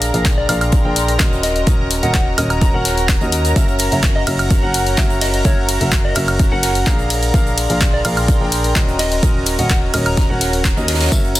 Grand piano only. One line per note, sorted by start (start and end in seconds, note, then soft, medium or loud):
0.00 0.11 D4 medium
0.00 0.11 G#4 medium
0.00 0.11 A#4 medium
0.00 0.11 F5 loud
0.14 0.46 D4 medium
0.14 0.46 G#4 medium
0.14 0.46 A#4 medium
0.14 0.46 F5 medium
0.49 0.82 D4 loud
0.49 0.82 G#4 medium
0.49 0.82 A#4 medium
0.49 0.82 F5 loud
0.85 1.17 D4 medium
0.85 1.17 G#4 medium
0.85 1.17 A#4 medium
0.85 1.17 G5 loud
1.20 1.64 C#4 medium
1.20 1.64 F#4 medium
1.20 1.64 A#4 medium
1.20 1.64 D#5 loud
1.67 2.00 C#4 medium
1.67 2.00 F#4 medium
1.67 2.00 A#4 medium
1.67 2.00 D#5 medium
2.03 2.35 C#4 medium
2.03 2.35 F#4 medium
2.03 2.35 A#4 medium
2.03 2.35 D#5 medium
2.38 2.71 C#4 medium
2.38 2.71 F#4 medium
2.38 2.71 A#4 medium
2.38 2.71 D#5 loud
2.74 3.06 C#4 medium
2.74 3.06 F#4 medium
2.74 3.06 A#4 medium
2.74 3.06 F#5 loud
3.21 3.53 C#4 medium
3.21 3.53 F#4 medium
3.21 3.53 A#4 medium
3.21 3.53 D#5 loud
3.56 3.89 C#4 medium
3.56 3.89 F#4 medium
3.56 3.89 A#4 medium
3.56 3.89 E5 medium
3.92 4.24 C#4 medium
3.92 4.24 F#4 medium
3.92 4.24 A#4 medium
3.92 4.24 E5 medium
4.27 4.60 C#4 loud
4.27 4.60 F#4 medium
4.27 4.60 A#4 medium
4.27 4.60 E5 loud
4.63 4.95 C#4 medium
4.63 4.95 F#4 medium
4.63 4.95 A#4 medium
4.63 4.95 F#5 loud
4.98 5.42 C#4 medium
4.98 5.42 F#4 medium
4.98 5.42 A#4 medium
4.98 5.42 E5 loud
5.45 5.78 C#4 medium
5.45 5.78 F#4 medium
5.45 5.78 A#4 medium
5.45 5.78 E5 medium
5.81 6.13 C#4 medium
5.81 6.13 F#4 medium
5.81 6.13 A#4 medium
5.81 6.13 E5 medium
6.16 6.49 C#4 medium
6.16 6.49 F#4 medium
6.16 6.49 A#4 medium
6.16 6.49 E5 loud
6.52 6.84 C#4 medium
6.52 6.84 F#4 medium
6.52 6.84 A#4 medium
6.52 6.84 F#5 loud
6.87 7.31 D4 medium
6.87 7.31 G#4 medium
6.87 7.31 A#4 medium
6.87 7.31 F5 loud
7.34 7.67 D4 medium
7.34 7.67 G#4 medium
7.34 7.67 A#4 medium
7.34 7.67 F5 medium
7.70 8.02 D4 medium
7.70 8.02 G#4 medium
7.70 8.02 A#4 medium
7.70 8.02 F5 medium
8.05 8.38 D4 loud
8.05 8.38 G#4 medium
8.05 8.38 A#4 medium
8.05 8.38 F5 loud
8.41 8.73 D4 medium
8.41 8.73 G#4 medium
8.41 8.73 A#4 medium
8.41 8.73 G5 loud
8.76 9.20 C#4 medium
8.76 9.20 F#4 medium
8.76 9.20 A#4 medium
8.76 9.20 D#5 loud
9.23 9.56 C#4 medium
9.23 9.56 F#4 medium
9.23 9.56 A#4 medium
9.23 9.56 D#5 medium
9.59 9.91 C#4 medium
9.59 9.91 F#4 medium
9.59 9.91 A#4 medium
9.59 9.91 D#5 medium
9.94 10.27 C#4 loud
9.94 10.27 F#4 medium
9.94 10.27 A#4 medium
9.94 10.27 D#5 loud
10.30 10.62 C#4 medium
10.30 10.62 F#4 medium
10.30 10.62 A#4 medium
10.30 10.62 F#5 medium
10.77 11.09 C#4 medium
10.77 11.09 F#4 medium
10.77 11.09 A#4 medium
10.77 11.09 D#5 medium
11.12 11.40 C#4 medium
11.12 11.40 F#4 medium
11.12 11.40 A#4 medium
11.12 11.40 E5 medium